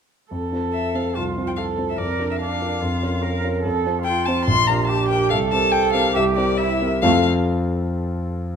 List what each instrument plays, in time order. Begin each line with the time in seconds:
0.31 grand piano F2, cello A4
0.52 grand piano C4 F4 C5
0.73 violin E5
0.95 grand piano C4 F4 C5, violin F5
1.15 grand piano C2, cello F4, violin A5
1.37 grand piano C4 F4 C5
1.47 violin G5
1.56 cello A4, violin F5
1.78 grand piano C4 F4 C5
1.89 violin E5
1.98 grand piano F2, cello A#4, violin D5
2.19 grand piano D4 F4 A#4
2.31 violin E5
2.40 cello D4, violin F5
2.61 grand piano D4 F4 A#4
2.81 grand piano F2, cello F4
3.03 grand piano C#4 F4 A#4
3.23 cello A#4
3.44 grand piano C#4 F4 A#4
3.63 grand piano F2, cello A4
3.86 grand piano C4 F4 C5
4.03 cello F4, violin G5
4.25 grand piano C4 F4 C5, violin A5
4.45 grand piano A#1, violin C6
4.67 grand piano D4 G4 A#4, violin A#5
4.87 cello G4, violin A5
5.09 grand piano D4 G4 A#4, violin G5
5.29 grand piano C2, cello A4, violin F5
5.52 grand piano C4 G4 A#4, violin A5
5.72 violin G5
5.93 grand piano C4 G4 A#4, violin F5
6.13 grand piano C2, cello G4, violin E5
6.36 grand piano C4 G4 A#4, violin D5
6.58 cello E4, violin E5
6.81 grand piano C4 G4 A#4
7.02 grand piano F2 F3 C4 F4 A4 F5, cello A3, violin F5